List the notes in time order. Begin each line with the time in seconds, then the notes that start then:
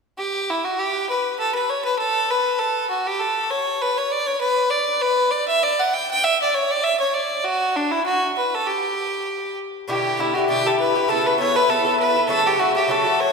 0.18 G4
0.50 E4
0.64 F#4
0.79 G4
1.09 B4
1.39 A4
1.55 B4
1.70 C#5
1.85 B4
1.99 A4
2.30 B4
2.59 A4
2.90 F#4
3.06 G4
3.20 A4
3.50 C#5
3.82 B4
3.97 C#5
4.12 D5
4.27 C#5
4.40 B4
4.70 D5
5.01 B4
5.31 D5
5.48 E5
5.63 D5
5.79 F#5
5.93 G5
6.11 G5
6.24 E5
6.41 D5
6.54 C#5
6.71 D5
6.84 E5
7.00 C#5
7.14 D5
7.44 F#4
7.76 D4
7.91 E4
8.06 F#4
8.38 B4
8.54 A4
8.66 G4
9.88 B2 D3 E4 G4
10.17 B2 D3 E4 G4
10.34 E4 F#4 G4
10.39 D3
10.49 B2 D3 E4 G4
10.66 D3 E4 G4 A4
10.79 B4
10.95 D3 E4 G4
11.08 C#3 B3 E4 A4
11.27 B4
11.38 C#3 B3 E4 A4 C#5
11.55 B3 E4 A4 B4
11.69 C#3 B3 E4 A4
11.85 B3 E4 A4
11.99 B4
12.16 B3 E4 A4
12.28 C#3 F#3 A3 F#4 A4
12.47 G4
12.57 C#3 F#3 A3 F#4
12.75 F#3 A3 F#4 G4
12.88 C#3 F#3 A3 F#4 A4
13.05 F#3 A3 F#4
13.20 C#5